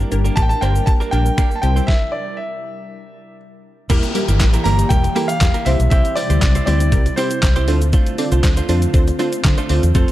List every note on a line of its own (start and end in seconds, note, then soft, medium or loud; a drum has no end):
0.00 1.59 G3 medium
0.00 1.61 D4 medium
0.00 0.10 G4 medium
0.00 0.10 A#4 medium
0.00 1.61 A#4 medium
0.00 shaker soft
0.12 0.28 G1 medium
0.12 0.27 A#3 medium
0.12 0.27 D4 medium
0.12 0.27 G4 medium
0.12 0.27 A#4 loud
0.12 closed hi-hat medium
0.12 shaker medium
0.24 0.40 A#3 medium
0.24 0.40 D4 medium
0.24 0.40 G4 medium
0.24 0.40 A#4 medium
0.24 shaker medium
0.36 0.53 A1 medium
0.36 0.52 A#3 medium
0.36 0.52 D4 medium
0.36 0.52 G4 medium
0.36 0.52 A#4 medium
0.36 0.42 A5 loud
0.36 finger snap loud
0.36 kick loud
0.36 closed hi-hat medium
0.36 shaker medium
0.42 0.50 G5 medium
0.49 0.61 A5 loud
0.49 muted clean electric guitar stroke soft
0.49 shaker medium
0.61 0.78 G1 medium
0.61 0.82 A#3 medium
0.61 0.77 A#3 medium
0.61 0.77 D4 medium
0.61 0.75 D4 medium
0.61 0.77 G4 medium
0.61 0.75 G4 medium
0.61 0.74 A#4 medium
0.61 0.77 C5 loud
0.61 0.85 G5 loud
0.61 closed hi-hat medium
0.61 shaker medium
0.75 muted clean electric guitar stroke soft
0.75 shaker medium
0.86 1.02 A#3 medium
0.86 1.02 D4 medium
0.86 1.02 G4 medium
0.86 1.02 A#4 medium
0.86 0.92 A5 loud
0.86 muted clean electric guitar stroke soft
0.86 kick loud
0.86 closed hi-hat medium
0.86 shaker medium
1.00 1.11 A#3 medium
1.00 1.11 D4 medium
1.00 1.12 G4 medium
1.00 1.12 A#4 medium
1.00 shaker soft
1.11 1.29 A#1 medium
1.11 1.29 A#3 medium
1.11 1.27 A#3 medium
1.11 1.25 D4 medium
1.11 1.28 D4 medium
1.11 1.28 G4 medium
1.11 1.25 G4 medium
1.11 1.28 A#4 medium
1.11 1.25 A#4 medium
1.11 1.58 G5 loud
1.11 closed hi-hat soft
1.11 shaker soft
1.26 muted clean electric guitar stroke soft
1.26 shaker medium
1.38 1.58 A#3 medium
1.38 1.53 A#3 medium
1.38 1.51 D4 medium
1.38 1.53 D4 medium
1.38 1.53 G4 medium
1.38 1.50 G4 loud
1.38 1.53 A#4 medium
1.38 1.50 A#4 medium
1.38 finger snap loud
1.38 kick loud
1.38 closed hi-hat medium
1.38 shaker medium
1.51 muted clean electric guitar stroke soft
1.51 shaker soft
1.56 1.62 A5 medium
1.62 1.79 C2 loud
1.62 1.88 C3 medium
1.62 1.88 G3 medium
1.62 1.83 C4 medium
1.62 1.83 E4 medium
1.62 1.88 E4 medium
1.62 1.83 G4 medium
1.62 1.84 C5 medium
1.62 1.86 G5 medium
1.62 muted clean electric guitar stroke soft
1.62 closed hi-hat soft
1.62 shaker medium
1.76 1.92 C4 medium
1.76 1.92 E4 medium
1.76 1.92 G4 medium
1.76 1.91 C5 medium
1.76 shaker medium
1.87 2.13 E5 loud
1.87 kick loud
1.87 snare medium
2.12 2.36 D5 medium
2.37 3.35 E5 medium
3.90 3.98 E1 loud
3.90 5.65 E3 medium
3.90 4.05 G3 loud
3.90 4.13 A#3 medium
3.90 4.05 A#3 loud
3.90 5.65 A#3 medium
3.90 4.05 E4 loud
3.90 4.13 E4 medium
3.90 4.05 G4 loud
3.90 5.65 G4 medium
3.90 4.14 G4 medium
3.90 4.05 A#4 loud
3.90 4.14 A#4 loud
3.90 kick loud
3.90 closed hi-hat medium
3.90 crash loud
3.90 downlifter medium
3.90 shaker medium
4.03 closed hi-hat soft
4.03 shaker soft
4.15 4.30 G3 medium
4.15 4.30 A#3 medium
4.15 4.30 E4 medium
4.15 4.30 G4 medium
4.15 4.30 A#4 loud
4.15 muted clean electric guitar stroke soft
4.15 open hi-hat medium
4.15 shaker medium
4.28 4.40 G1 medium
4.28 4.39 A#3 medium
4.28 4.39 E4 medium
4.28 4.40 G4 medium
4.28 4.40 A#4 medium
4.28 closed hi-hat soft
4.28 shaker medium
4.40 4.56 A1 medium
4.40 4.55 G3 medium
4.40 4.55 A#3 medium
4.40 4.55 E4 medium
4.40 4.55 G4 medium
4.40 4.55 A#4 loud
4.40 muted clean electric guitar stroke soft
4.40 kick loud
4.40 snare loud
4.40 clap loud
4.40 closed hi-hat medium
4.40 shaker medium
4.53 4.64 A#3 medium
4.53 4.65 E4 medium
4.53 4.65 G4 medium
4.53 4.65 A#4 medium
4.53 closed hi-hat medium
4.53 shaker soft
4.53 shaker medium
4.64 4.82 G1 medium
4.64 4.80 G3 medium
4.64 4.86 A#3 medium
4.64 4.80 A#3 medium
4.64 4.80 E4 medium
4.64 4.78 E4 loud
4.64 4.80 G4 medium
4.64 4.78 G4 medium
4.64 4.80 A#4 medium
4.64 4.78 A#4 loud
4.64 4.88 A#5 loud
4.64 open hi-hat medium
4.64 shaker soft
4.64 shaker medium
4.79 muted clean electric guitar stroke medium
4.79 closed hi-hat medium
4.79 shaker medium
4.89 5.07 E1 loud
4.89 5.05 G3 loud
4.89 5.05 A#3 medium
4.89 5.06 E4 medium
4.89 5.06 G4 medium
4.89 5.06 A#4 loud
4.89 5.30 G5 loud
4.89 kick loud
4.89 closed hi-hat medium
4.89 shaker medium
5.04 muted clean electric guitar stroke soft
5.04 closed hi-hat medium
5.04 shaker soft
5.04 shaker medium
5.16 5.31 G3 medium
5.16 5.36 A#3 medium
5.16 5.31 A#3 medium
5.16 5.29 E4 medium
5.16 5.31 E4 medium
5.16 5.31 G4 medium
5.16 5.28 G4 medium
5.16 5.31 A4 medium
5.16 5.28 A#4 loud
5.16 open hi-hat medium
5.16 shaker medium
5.16 shaker soft
5.28 5.67 F5 loud
5.28 muted clean electric guitar stroke medium
5.28 closed hi-hat medium
5.28 shaker medium
5.28 shaker soft
5.41 5.50 E2 loud
5.41 5.56 G3 medium
5.41 5.56 A#3 medium
5.41 5.56 E4 medium
5.41 5.56 G4 medium
5.41 5.56 A#4 medium
5.41 muted clean electric guitar stroke soft
5.41 kick loud
5.41 snare loud
5.41 clap loud
5.41 closed hi-hat medium
5.41 shaker medium
5.54 5.66 A#3 medium
5.54 5.65 E4 medium
5.54 5.66 G4 medium
5.54 5.67 A#4 medium
5.54 closed hi-hat soft
5.54 shaker soft
5.65 5.75 C2 loud
5.65 7.66 C3 medium
5.65 7.66 G3 medium
5.65 6.07 G3 medium
5.65 5.82 C4 medium
5.65 6.07 C4 medium
5.65 7.66 E4 medium
5.65 6.07 E4 medium
5.65 5.79 E4 medium
5.65 6.07 G4 medium
5.65 5.79 G4 medium
5.65 6.07 C5 medium
5.65 5.78 C5 medium
5.65 5.89 E5 medium
5.65 open hi-hat medium
5.65 shaker medium
5.80 5.87 B1 medium
5.80 muted clean electric guitar stroke medium
5.80 closed hi-hat medium
5.80 shaker soft
5.80 shaker medium
5.90 6.00 C2 loud
5.90 6.15 C4 medium
5.90 6.15 E4 medium
5.90 6.15 G4 medium
5.90 6.15 C5 medium
5.90 6.14 E5 loud
5.90 kick loud
5.90 closed hi-hat medium
5.90 shaker medium
6.05 closed hi-hat soft
6.05 shaker medium
6.16 6.32 G3 medium
6.16 6.32 C4 medium
6.16 6.32 E4 medium
6.16 6.32 G4 medium
6.16 6.32 C5 medium
6.16 6.65 D5 loud
6.16 muted clean electric guitar stroke soft
6.16 open hi-hat medium
6.16 shaker medium
6.30 6.37 D2 medium
6.30 6.41 C4 medium
6.30 6.41 E4 medium
6.30 6.41 G4 medium
6.30 6.42 C5 medium
6.30 closed hi-hat medium
6.30 shaker medium
6.30 shaker soft
6.42 6.57 G3 medium
6.42 6.57 C4 medium
6.42 6.57 E4 medium
6.42 6.57 G4 medium
6.42 6.57 C5 medium
6.42 muted clean electric guitar stroke soft
6.42 kick loud
6.42 snare loud
6.42 clap loud
6.42 closed hi-hat medium
6.42 shaker medium
6.55 6.66 C4 medium
6.55 6.66 E4 medium
6.55 6.67 G4 medium
6.55 6.67 C5 medium
6.55 closed hi-hat medium
6.55 shaker soft
6.55 shaker medium
6.66 6.94 D2 medium
6.66 6.82 G3 medium
6.66 6.82 C4 medium
6.66 6.87 C4 medium
6.66 6.82 E4 medium
6.66 6.80 E4 medium
6.66 6.82 G4 medium
6.66 6.80 G4 loud
6.66 6.82 C5 medium
6.66 6.79 C5 medium
6.66 7.13 D5 medium
6.66 open hi-hat medium
6.66 shaker medium
6.80 muted clean electric guitar stroke soft
6.80 closed hi-hat medium
6.80 shaker medium
6.92 7.08 C2 medium
6.92 7.07 G3 loud
6.92 7.07 C4 medium
6.92 7.07 E4 medium
6.92 7.07 G4 medium
6.92 7.07 A#4 loud
6.92 kick loud
6.92 closed hi-hat medium
6.92 shaker medium
7.06 muted clean electric guitar stroke soft
7.06 closed hi-hat medium
7.06 shaker medium
7.16 7.32 G3 medium
7.16 7.32 C4 medium
7.16 7.38 C4 loud
7.16 7.32 E4 medium
7.16 7.31 E4 medium
7.16 7.32 G4 medium
7.16 7.30 G4 loud
7.16 7.64 C5 medium
7.16 7.32 C5 medium
7.16 7.30 C5 loud
7.16 open hi-hat medium
7.16 shaker medium
7.16 shaker soft
7.31 muted clean electric guitar stroke soft
7.31 closed hi-hat medium
7.31 shaker medium
7.31 shaker soft
7.42 7.68 C2 medium
7.42 7.58 G3 medium
7.42 7.58 C4 medium
7.42 7.58 E4 medium
7.42 7.58 G4 medium
7.42 7.58 C5 medium
7.42 muted clean electric guitar stroke medium
7.42 kick loud
7.42 snare loud
7.42 clap loud
7.42 closed hi-hat medium
7.42 shaker medium
7.56 7.68 C4 medium
7.56 7.68 E4 medium
7.56 7.69 G4 medium
7.56 7.68 C5 medium
7.56 closed hi-hat medium
7.56 shaker soft
7.68 7.93 D2 loud
7.68 9.93 D3 medium
7.68 7.84 A3 medium
7.68 8.09 C4 medium
7.68 10.12 C4 medium
7.68 8.09 D4 medium
7.68 7.81 D4 medium
7.68 8.09 F4 medium
7.68 9.93 F4 medium
7.68 7.81 F4 medium
7.68 8.09 A4 medium
7.68 8.09 C5 medium
7.68 7.80 C5 medium
7.68 open hi-hat medium
7.68 shaker medium
7.81 muted clean electric guitar stroke soft
7.81 closed hi-hat medium
7.81 shaker soft
7.81 shaker medium
7.93 8.16 A3 medium
7.93 8.17 D4 medium
7.93 8.17 F4 loud
7.93 8.17 C5 medium
7.93 kick loud
7.93 closed hi-hat medium
7.93 shaker medium
8.06 closed hi-hat soft
8.06 shaker medium
8.06 shaker soft
8.18 8.33 C4 medium
8.18 8.33 D4 medium
8.18 8.33 F4 medium
8.18 8.33 A4 medium
8.18 8.33 D5 loud
8.18 muted clean electric guitar stroke soft
8.18 open hi-hat medium
8.18 shaker medium
8.32 8.39 C2 medium
8.32 8.43 A3 medium
8.32 8.43 D4 medium
8.32 8.43 F4 medium
8.32 8.44 C5 medium
8.32 closed hi-hat medium
8.32 shaker medium
8.32 shaker soft
8.43 8.60 D2 loud
8.43 8.58 C4 medium
8.43 8.58 D4 medium
8.43 8.58 F4 medium
8.43 8.58 A4 medium
8.43 8.59 C5 loud
8.43 muted clean electric guitar stroke soft
8.43 kick loud
8.43 snare medium
8.43 clap loud
8.43 closed hi-hat medium
8.43 shaker medium
8.57 8.68 A3 medium
8.57 8.68 D4 medium
8.57 8.68 F4 medium
8.57 8.69 C5 medium
8.57 closed hi-hat medium
8.57 shaker soft
8.57 shaker medium
8.69 8.85 F2 loud
8.69 8.89 A3 medium
8.69 8.84 C4 medium
8.69 8.84 D4 medium
8.69 8.82 D4 medium
8.69 8.84 F4 medium
8.69 8.82 F4 loud
8.69 8.84 A4 medium
8.69 8.84 C5 loud
8.69 8.81 C5 loud
8.69 open hi-hat medium
8.69 shaker soft
8.69 shaker medium
8.82 muted clean electric guitar stroke soft
8.82 closed hi-hat medium
8.82 shaker medium
8.94 9.10 D2 loud
8.94 9.09 C4 loud
8.94 9.09 D4 loud
8.94 9.09 F4 loud
8.94 9.09 A4 loud
8.94 9.09 C5 loud
8.94 kick loud
8.94 closed hi-hat medium
8.94 shaker medium
9.07 muted clean electric guitar stroke soft
9.07 closed hi-hat medium
9.07 shaker medium
9.07 shaker soft
9.19 9.39 A3 medium
9.19 9.34 C4 medium
9.19 9.34 D4 medium
9.19 9.32 D4 medium
9.19 9.34 F4 medium
9.19 9.32 F4 loud
9.19 9.34 A4 medium
9.19 9.34 C5 loud
9.19 9.31 C5 loud
9.19 open hi-hat medium
9.19 shaker medium
9.19 shaker soft
9.33 muted clean electric guitar stroke soft
9.33 closed hi-hat medium
9.33 shaker medium
9.33 shaker soft
9.44 9.53 D3 loud
9.44 9.59 C4 loud
9.44 9.59 D4 medium
9.44 9.59 F4 medium
9.44 9.59 A4 medium
9.44 9.59 C5 loud
9.44 kick loud
9.44 snare medium
9.44 clap loud
9.44 closed hi-hat medium
9.44 shaker medium
9.58 9.69 A3 medium
9.58 9.69 D4 medium
9.58 9.69 F4 medium
9.58 9.70 C5 medium
9.58 closed hi-hat soft
9.58 shaker soft
9.58 shaker medium
9.69 9.78 D2 medium
9.69 9.86 A3 medium
9.69 9.84 C4 loud
9.69 9.85 D4 medium
9.69 9.83 D4 medium
9.69 9.85 F4 medium
9.69 9.83 F4 medium
9.69 9.85 A4 medium
9.69 9.85 C5 loud
9.69 9.82 C5 medium
9.69 open hi-hat medium
9.69 shaker soft
9.83 9.91 E2 medium
9.83 muted clean electric guitar stroke soft
9.83 closed hi-hat medium
9.83 shaker soft
9.83 shaker medium
9.95 10.03 F2 loud
9.95 10.12 F3 medium
9.95 10.10 A3 loud
9.95 10.12 C4 medium
9.95 10.10 C4 loud
9.95 10.10 F4 loud
9.95 10.12 F4 medium
9.95 10.12 A4 medium
9.95 10.10 A4 loud
9.95 10.12 A4 medium
9.95 10.10 C5 loud
9.95 10.12 C5 medium
9.95 kick loud
9.95 closed hi-hat medium
9.95 shaker medium
10.08 closed hi-hat soft
10.08 shaker soft
10.08 shaker medium